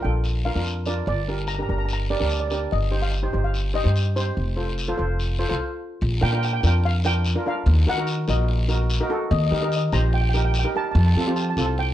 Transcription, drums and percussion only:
0.24 short guiro medium
0.24 long guiro medium
0.65 short guiro medium
0.86 short guiro medium
1.06 long guiro medium
1.47 short guiro medium
1.89 short guiro medium
1.89 long guiro medium
2.30 short guiro medium
2.50 short guiro medium
2.71 long guiro medium
3.13 short guiro medium
3.54 short guiro medium
3.54 long guiro medium
3.96 short guiro medium
4.16 short guiro medium
4.37 long guiro medium
4.78 short guiro medium
5.19 short guiro medium
5.19 long guiro medium
6.01 long guiro medium
6.43 short guiro medium
6.63 short guiro medium
6.84 long guiro medium
7.04 short guiro medium
7.25 short guiro medium
7.66 long guiro medium
8.07 short guiro medium
8.28 short guiro medium
8.49 long guiro medium
8.69 short guiro medium
8.90 short guiro medium
9.31 long guiro medium
9.72 short guiro medium
9.93 short guiro medium
10.13 long guiro medium
10.34 short guiro medium
10.54 short guiro medium
10.95 long guiro medium
11.36 short guiro medium
11.57 short guiro medium
11.78 long guiro medium

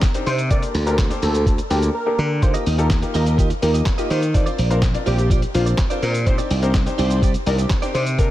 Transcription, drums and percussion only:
0.02 kick loud
0.02 snare loud
0.02 clap loud
0.02 closed hi-hat medium
0.02 shaker medium
0.14 closed hi-hat medium
0.14 shaker medium
0.27 open hi-hat medium
0.27 shaker soft
0.38 closed hi-hat medium
0.38 shaker medium
0.50 kick loud
0.50 closed hi-hat medium
0.50 shaker medium
0.63 closed hi-hat medium
0.63 shaker medium
0.75 open hi-hat medium
0.75 shaker soft
0.87 closed hi-hat medium
0.87 shaker medium
0.98 kick loud
0.98 snare loud
0.98 clap loud
0.98 closed hi-hat medium
0.98 shaker medium
1.10 closed hi-hat medium
1.10 shaker medium
1.22 open hi-hat medium
1.22 shaker medium
1.34 closed hi-hat medium
1.34 shaker medium
1.46 kick loud
1.46 closed hi-hat medium
1.46 shaker medium
1.58 closed hi-hat medium
1.58 shaker medium
1.70 open hi-hat medium
1.70 shaker medium
1.82 closed hi-hat medium
1.82 shaker medium
2.42 kick loud
2.42 closed hi-hat medium
2.42 shaker medium
2.54 closed hi-hat medium
2.54 shaker medium
2.66 open hi-hat medium
2.66 shaker soft
2.79 closed hi-hat medium
2.79 shaker medium
2.90 kick loud
2.90 snare loud
2.90 clap loud
2.90 closed hi-hat medium
2.90 shaker medium
3.02 closed hi-hat medium
3.02 shaker medium
3.14 open hi-hat medium
3.14 shaker medium
3.26 closed hi-hat medium
3.26 shaker medium
3.38 kick loud
3.38 closed hi-hat medium
3.38 shaker medium
3.50 closed hi-hat medium
3.50 shaker soft
3.62 open hi-hat medium
3.62 shaker medium
3.74 closed hi-hat medium
3.74 shaker medium
3.85 kick loud
3.85 snare loud
3.85 clap loud
3.85 closed hi-hat medium
3.85 shaker medium
3.98 closed hi-hat medium
3.98 shaker medium
4.10 open hi-hat medium
4.10 shaker medium
4.22 closed hi-hat medium
4.22 shaker medium
4.34 kick loud
4.34 closed hi-hat medium
4.34 shaker medium
4.46 closed hi-hat medium
4.46 shaker medium
4.58 open hi-hat medium
4.58 shaker soft
4.71 closed hi-hat medium
4.71 shaker medium
4.82 kick loud
4.82 snare loud
4.82 clap loud
4.82 closed hi-hat medium
4.82 shaker medium
4.94 closed hi-hat medium
4.94 shaker medium
5.06 open hi-hat medium
5.06 shaker medium
5.18 closed hi-hat medium
5.18 shaker medium
5.30 kick loud
5.30 closed hi-hat medium
5.30 shaker medium
5.42 closed hi-hat soft
5.42 shaker medium
5.54 open hi-hat medium
5.54 shaker medium
5.67 closed hi-hat medium
5.67 shaker medium
5.77 kick loud
5.77 snare loud
5.77 clap loud
5.77 closed hi-hat medium
5.77 shaker medium
5.90 closed hi-hat medium
5.90 shaker medium
6.03 open hi-hat medium
6.03 shaker medium
6.14 closed hi-hat medium
6.14 shaker medium
6.26 kick loud
6.26 closed hi-hat medium
6.26 shaker medium
6.38 closed hi-hat medium
6.38 shaker medium
6.51 open hi-hat medium
6.51 shaker medium
6.63 closed hi-hat medium
6.63 shaker medium
6.74 kick loud
6.74 snare loud
6.74 clap loud
6.74 closed hi-hat medium
6.74 shaker medium
6.87 closed hi-hat medium
6.87 shaker medium
6.98 open hi-hat medium
6.98 shaker medium
7.11 closed hi-hat medium
7.11 shaker medium
7.22 kick loud
7.22 closed hi-hat medium
7.22 shaker medium
7.34 closed hi-hat medium
7.34 shaker medium
7.46 open hi-hat medium
7.46 shaker medium
7.59 closed hi-hat medium
7.59 shaker medium
7.70 kick loud
7.70 snare loud
7.70 clap loud
7.70 closed hi-hat medium
7.70 shaker medium
7.82 closed hi-hat medium
7.82 shaker medium
7.95 open hi-hat medium
7.95 shaker medium
8.06 closed hi-hat medium
8.06 shaker medium
8.19 kick loud
8.19 closed hi-hat medium
8.19 shaker medium

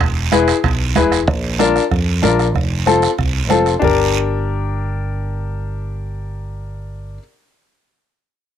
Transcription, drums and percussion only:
0.00 bombo low medium
0.00 bombo rim medium
0.00 high conga soft
0.00 high timbale medium
0.00 long guiro medium
0.32 bombo rim medium
0.32 high conga medium
0.32 high timbale medium
0.32 short guiro medium
0.48 bombo rim medium
0.48 high timbale medium
0.48 short guiro medium
0.64 bombo low medium
0.64 bombo rim medium
0.64 high conga soft
0.64 high timbale medium
0.64 long guiro medium
0.95 bombo low medium
0.95 bombo rim medium
0.95 high conga medium
0.95 high timbale medium
0.95 short guiro medium
1.12 bombo rim medium
1.12 high timbale medium
1.12 short guiro medium
1.28 bombo low medium
1.28 bombo rim medium
1.28 long guiro medium
1.59 bombo rim medium
1.59 high conga medium
1.59 short guiro medium
1.76 bombo rim medium
1.76 short guiro medium
1.91 bombo low medium
1.91 bombo rim medium
1.91 high conga soft
1.91 long guiro medium
2.23 bombo rim medium
2.23 high conga medium
2.23 short guiro medium
2.39 bombo rim medium
2.39 short guiro medium
2.55 bombo low medium
2.55 bombo rim medium
2.55 high conga soft
2.55 long guiro medium
2.87 bombo rim medium
2.87 high conga medium
2.87 short guiro medium
3.02 bombo rim medium
3.02 short guiro medium
3.18 bombo low medium
3.18 bombo rim medium
3.18 high conga soft
3.18 long guiro medium
3.50 bombo rim medium
3.50 high conga medium
3.50 short guiro medium
3.66 bombo rim medium
3.66 short guiro medium
3.82 bombo low medium
3.82 low conga loud
3.82 long guiro medium

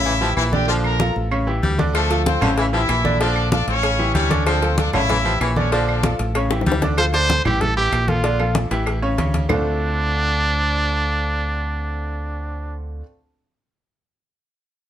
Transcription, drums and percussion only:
0.06 high conga soft
0.21 high conga soft
0.37 high conga soft
0.37 claves medium
0.53 high conga medium
0.69 high conga soft
0.84 high conga soft
0.84 claves medium
1.00 high conga loud
1.16 high conga soft
1.32 high conga soft
1.32 claves medium
1.48 high conga soft
1.63 high conga medium
1.79 high conga loud
1.95 cowbell loud
1.95 high conga soft
1.95 claves medium
2.11 cowbell medium
2.11 high conga soft
2.26 cowbell medium
2.26 high conga loud
2.42 high conga soft
2.42 low conga medium
2.42 claves medium
2.58 cowbell medium
2.58 high conga soft
2.73 high conga soft
2.89 cowbell medium
2.89 high conga soft
2.89 claves medium
3.05 high conga medium
3.20 cowbell loud
3.20 high conga soft
3.36 high conga soft
3.36 claves medium
3.52 cowbell medium
3.52 high conga loud
3.68 cowbell medium
3.68 high conga soft
3.83 cowbell medium
3.83 high conga soft
3.83 claves medium
3.99 high conga soft
4.15 cowbell medium
4.15 high conga medium
4.31 cowbell medium
4.31 high conga loud
4.46 cowbell loud
4.46 high conga soft
4.46 claves medium
4.62 cowbell medium
4.62 high conga soft
4.78 cowbell medium
4.78 high conga loud
4.93 high conga soft
4.93 low conga medium
4.93 claves medium
5.09 cowbell loud
5.09 high conga soft
5.09 low conga medium
5.25 high conga soft
5.41 cowbell medium
5.41 high conga soft
5.41 claves medium
5.56 high conga medium
5.72 cowbell loud
5.72 high conga soft
5.88 high conga soft
5.88 claves medium
6.03 cowbell medium
6.03 high conga loud
6.19 cowbell medium
6.19 high conga soft
6.35 cowbell loud
6.35 high conga soft
6.35 claves medium
6.51 high bongo loud
6.51 high conga soft
6.61 low bongo medium
6.66 cowbell medium
6.66 high conga medium
6.72 low bongo loud
6.82 cowbell medium
6.82 low bongo medium
6.82 high conga medium
6.97 cowbell loud
6.97 high conga soft
6.97 claves medium
7.14 cowbell medium
7.14 high conga soft
7.29 cowbell medium
7.29 high conga loud
7.45 high conga soft
7.45 low conga medium
7.45 claves medium
7.61 cowbell medium
7.61 high conga soft
7.61 low conga medium
7.77 high conga soft
7.92 cowbell medium
7.92 high conga soft
7.92 claves medium
8.08 high conga medium
8.24 cowbell loud
8.24 high conga soft
8.39 high conga soft
8.39 claves medium
8.55 cowbell medium
8.55 high conga loud
8.71 cowbell medium
8.71 high conga soft
8.86 cowbell medium
8.86 high conga soft
8.86 claves medium
9.03 high conga soft
9.18 cowbell medium
9.18 high conga medium
9.34 cowbell medium
9.34 high conga medium
9.49 low bongo loud
9.49 low conga loud
9.49 claves loud

